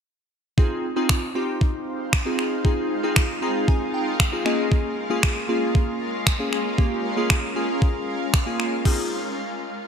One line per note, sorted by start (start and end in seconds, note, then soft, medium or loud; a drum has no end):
0.58 4.42 G#3 medium
0.58 0.85 C4 medium
0.58 0.85 D#4 medium
0.58 4.42 D#4 medium
0.58 8.81 F4 medium
0.58 0.86 F4 medium
0.58 0.86 G#4 medium
0.58 2.63 C5 medium
0.58 4.42 F5 medium
0.58 kick loud
0.96 1.24 C4 medium
0.96 1.24 D#4 medium
0.96 1.24 F4 medium
0.96 1.24 G#4 medium
1.09 finger snap loud
1.09 kick loud
1.35 2.00 C4 medium
1.35 2.00 D#4 medium
1.35 2.00 F4 medium
1.35 2.00 G4 medium
1.61 kick loud
2.13 finger snap loud
2.13 kick loud
2.25 2.53 C4 medium
2.25 2.54 D#4 medium
2.25 2.54 F4 medium
2.25 2.54 G#4 medium
2.39 finger snap medium
2.64 2.92 C4 medium
2.64 2.92 D#4 medium
2.64 2.92 F4 medium
2.64 2.93 G#4 medium
2.64 4.44 A#4 medium
2.64 kick loud
3.03 3.31 C4 medium
3.03 3.31 D#4 medium
3.03 3.31 F4 medium
3.03 3.31 G#4 medium
3.16 finger snap loud
3.16 kick loud
3.42 4.07 C4 medium
3.42 4.07 D#4 medium
3.42 4.07 F4 medium
3.42 4.07 G#4 medium
3.42 3.66 A#5 medium
3.68 3.92 G#5 medium
3.68 kick loud
3.94 4.18 G5 medium
4.20 4.44 F5 medium
4.20 finger snap loud
4.20 kick loud
4.32 4.45 C4 medium
4.32 4.46 D#4 medium
4.32 4.44 F4 medium
4.32 4.45 G#4 medium
4.45 8.81 G#3 medium
4.45 4.97 A#3 medium
4.45 4.97 C#4 medium
4.45 8.81 C#4 medium
4.45 4.97 F4 medium
4.45 4.97 G#4 medium
4.45 8.81 A#4 medium
4.45 4.70 D#5 medium
4.45 8.81 F5 medium
4.45 finger snap medium
4.72 kick loud
5.10 5.38 A#3 medium
5.10 5.38 C#4 medium
5.10 5.38 F4 medium
5.10 5.38 G#4 medium
5.23 finger snap loud
5.23 kick loud
5.49 6.14 A#3 medium
5.49 6.14 C#4 medium
5.49 6.14 F4 medium
5.49 6.14 G#4 medium
5.75 kick loud
6.27 finger snap loud
6.27 kick loud
6.39 6.67 A#3 medium
6.39 6.67 C#4 medium
6.39 6.67 F4 medium
6.39 6.68 G#4 medium
6.53 finger snap medium
6.78 7.06 A#3 medium
6.78 7.06 C#4 medium
6.78 7.06 F4 medium
6.78 7.06 G4 medium
6.78 kick loud
7.17 7.45 A#3 medium
7.17 7.45 C#4 medium
7.17 7.45 F4 medium
7.17 7.45 G#4 medium
7.30 finger snap loud
7.30 kick loud
7.56 8.21 A#3 medium
7.56 8.21 C#4 medium
7.56 8.21 F4 medium
7.56 8.21 G#4 medium
7.82 kick loud
8.34 finger snap loud
8.34 kick loud
8.46 8.74 A#3 medium
8.46 8.74 C#4 medium
8.46 8.74 F4 medium
8.46 8.74 G#4 medium
8.60 finger snap medium
8.85 9.09 C4 medium
8.85 9.09 D#4 medium
8.85 9.09 F4 medium
8.85 9.09 G#4 medium
8.85 kick loud
8.85 crash medium